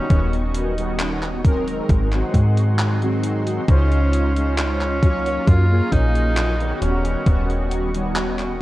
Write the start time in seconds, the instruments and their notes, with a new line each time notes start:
Already playing: tenor saxophone C#4, analog synth pad D#4 D#5 C#6
0.09 fm bass D#1, analog polysynth D#3 G3 B3 C#4 F#4, kick, closed hi-hat
0.33 closed hi-hat
0.54 closed hi-hat
0.78 analog polysynth D#3 G3 B3 C#4 F#4, closed hi-hat
0.99 clap, closed hi-hat
1.23 clap, closed hi-hat
1.44 analog polysynth D#3 F#3 G#3 C4 A#4, kick, closed hi-hat
1.68 closed hi-hat
1.89 fm bass G#1, analog synth pad G#4 F#5 C6, kick, closed hi-hat
2.12 analog polysynth D#3 F#3 G#3 C4 F#4, clap, closed hi-hat
2.34 fm bass G#2, kick, closed hi-hat
2.57 closed hi-hat
2.79 clap, closed hi-hat
3.02 analog polysynth D#3 F#3 G#3 C4 F#4, closed hi-hat
3.23 closed hi-hat
3.47 closed hi-hat
3.68 fm bass C#2, analog polysynth G#3 C#4 D#4 F4 C5, analog synth pad C#4 F5, tenor saxophone C#4, kick, closed hi-hat
3.92 closed hi-hat
4.13 closed hi-hat
4.36 analog polysynth G#3 C#4 D#4 F4 C5, closed hi-hat
4.58 tenor saxophone C#4, clap, closed hi-hat
4.81 clap
5.02 analog polysynth F#3 A#3 C#4 F4 C#5, kick, closed hi-hat
5.26 closed hi-hat
5.47 fm bass F#2, tenor saxophone F4, analog synth pad G#4 A#5, kick, closed hi-hat
5.70 analog polysynth F#3 A#3 C#4 F4 G#4
5.92 fm bass A#1, tenor saxophone D#4, kick, closed hi-hat
6.15 closed hi-hat
6.37 clap, closed hi-hat
6.60 analog polysynth D#3 G3 B3 C#4 F#4, closed hi-hat
6.82 fm bass D#1, tenor saxophone C#4, analog synth pad F#4 D#5 C#6, closed hi-hat
7.05 closed hi-hat
7.26 fm bass D#1, analog polysynth D#3 G3 B3 C#4 F#4, kick, closed hi-hat
7.50 closed hi-hat
7.71 closed hi-hat
7.94 analog polysynth D#3 G3 B3 C#4 F#4, closed hi-hat
8.16 clap, closed hi-hat
8.39 clap, closed hi-hat